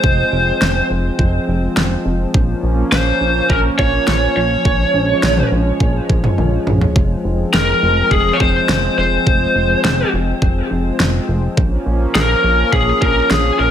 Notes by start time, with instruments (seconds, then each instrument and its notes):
Already playing: analog synth pad F3 G#3 C4, lead electric guitar C5
0.04 analog synth bass F1, kick
0.33 analog synth bass F1
0.61 analog synth bass F1, snare
0.90 analog synth bass F1
1.19 analog synth bass F1, kick
1.48 analog synth bass F1
1.77 analog synth bass F1, snare
2.06 analog synth bass F1
2.34 analog synth bass A#1, analog synth pad A#3 C#4, kick
2.63 analog synth bass A#1
2.92 analog synth bass A#1, lead electric guitar C5, snare
3.21 analog synth bass A#1
3.50 analog synth bass A#1, lead electric guitar A#4, kick
3.79 analog synth bass A#1, lead electric guitar C#5, kick
4.07 analog synth bass A#1, snare
4.36 analog synth bass A#1, lead electric guitar C#5
4.65 analog synth bass A#1, analog synth pad G#3, kick
4.94 analog synth bass A#1
5.23 analog synth bass A#1, snare
5.37 mid tom
5.52 analog synth bass A#1
5.80 analog synth bass A#1, kick
6.10 analog synth bass A#1, kick
6.24 mid tom
6.38 analog synth bass A#1, high tom
6.67 analog synth bass A#1, mid tom
6.81 floor tom
6.96 analog synth bass F1, analog synth pad C4, kick
7.25 analog synth bass F1
7.54 analog synth bass F1, lead electric guitar A#4, snare
7.83 analog synth bass F1
8.11 analog synth bass F1, lead electric guitar G#4, kick
8.33 lead electric guitar C#5
8.40 analog synth bass F1, lead electric guitar C5, kick
8.69 analog synth bass F1, snare
8.98 analog synth bass F1, lead electric guitar C5
9.27 analog synth bass F1, kick
9.56 analog synth bass F1
9.84 analog synth bass F1, snare
10.13 analog synth bass F1
10.42 analog synth bass F1, kick
10.71 analog synth bass F1
11.00 analog synth bass F1, snare
11.29 analog synth bass F1
11.57 analog synth bass A#1, analog synth pad F3 A#3 C#4, kick
11.86 analog synth bass A#1
12.15 analog synth bass A#1, lead electric guitar A#4, snare
12.44 analog synth bass A#1
12.73 analog synth bass A#1, lead electric guitar G#4, kick
13.02 analog synth bass A#1, lead electric guitar A#4, kick
13.30 analog synth bass A#1, lead electric guitar G#4, snare
13.59 analog synth bass A#1, lead electric guitar A#4